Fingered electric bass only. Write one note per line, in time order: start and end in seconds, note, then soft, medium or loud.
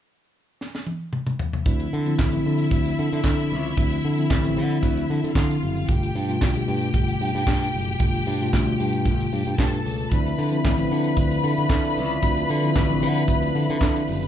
1.66 1.86 D2 medium
1.93 2.13 D3 loud
2.19 2.39 A1 medium
2.46 2.66 D3 medium
2.71 2.92 D2 medium
2.99 3.09 D3 medium
3.13 3.22 D3 medium
3.24 3.53 D3 medium
3.52 3.72 C#2 medium
3.78 3.98 D2 medium
4.05 4.24 D3 medium
4.31 4.59 A1 medium
4.57 4.77 D3 medium
4.83 5.03 D2 loud
5.10 5.21 D3 medium
5.24 5.33 D3 medium
5.36 5.56 D3 medium
5.63 5.83 F#1 medium
5.89 6.09 G1 medium
6.16 6.36 G2 medium
6.42 6.62 D2 medium
6.68 6.88 G2 loud
6.94 7.14 G1 medium
7.21 7.32 G2 medium
7.35 7.44 G2 medium
7.47 7.67 G2 loud
7.74 7.94 F#1 medium
8.00 8.20 G1 medium
8.27 8.47 G2 loud
8.54 8.73 D2 medium
8.80 9.07 G2 medium
9.06 9.26 G1 medium
9.33 9.43 G2 medium
9.47 9.56 G2 medium
9.59 9.79 G2 medium
9.85 10.05 C#2 medium
10.12 10.32 D2 medium
10.39 10.58 D3 loud
10.65 10.85 A1 medium
10.92 11.11 D3 medium
11.17 11.37 D2 medium
11.44 11.54 D3 medium
11.58 11.67 D3 medium
11.70 11.99 D3 medium
11.97 12.17 C#2 medium
12.23 12.43 D2 loud
12.50 12.70 D3 loud
12.76 13.04 A1 loud
13.02 13.22 D3 loud
13.28 13.49 D2 medium
13.55 13.66 D3 medium
13.70 13.79 D3 loud
13.81 14.02 D3 loud
14.09 14.28 F#1 medium